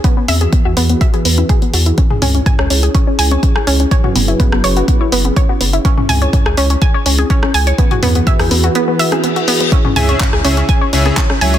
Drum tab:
HH |x-oxx-oxxxoxxxox|x-oxx-oxx-oxx-ox|x-oxx-oxx-oxx-ox|x-oxx-oxx-oxx-ox|
CP |----------------|----------------|----------------|----------------|
SD |----------------|-----r-------r--|-----r----------|-----r-------r--|
T2 |----------------|-oo-o-----------|-oo-o-----------|-oo-o-----------|
CG |--o--------o----|--o--------o----|--o--------o----|--o--------o----|
BD |o---o---o---o---|o---o---o---o---|o---o---o---o---|o---o---o---o---|

HH |xxoxxooxx-oxxxox|x-oxx-oxx-oxx-ox|
CP |----------------|----x-------x---|
SD |-----r-----r----|-----r-----r-r--|
T2 |-oo-o-----------|-oo-o-----------|
CG |--o---o----o----|--o--------o----|
BD |o---o-----------|o---o---o---o---|